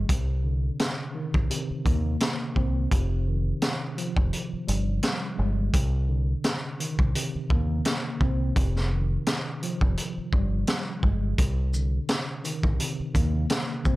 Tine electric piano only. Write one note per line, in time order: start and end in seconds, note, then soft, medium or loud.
0.00 0.11 G3 medium
0.00 0.11 G#3 medium
0.11 1.49 C3 medium
0.44 2.91 D3 medium
1.15 2.91 D#3 medium
1.50 2.91 C3 medium
1.85 2.91 A#3 medium
2.57 2.92 C4 medium
2.92 5.74 C3 loud
3.27 5.74 D#3 medium
3.98 5.74 F3 medium
4.67 5.74 G3 medium
5.38 5.74 G#3 medium
5.75 7.14 C3 medium
6.09 8.56 D3 medium
6.80 8.56 D#3 medium
7.15 8.56 C3 medium
7.50 8.56 A#3 medium
8.21 8.56 C4 medium
8.57 11.39 C3 medium
8.91 11.38 D#3 medium
9.63 11.39 F3 medium
10.32 11.38 G3 medium
11.03 11.38 G#3 medium
11.40 12.78 C3 medium
11.74 13.96 D3 medium
12.44 13.96 D#3 medium
12.79 13.96 C3 medium
13.14 13.96 A#3 medium
13.86 13.96 C4 medium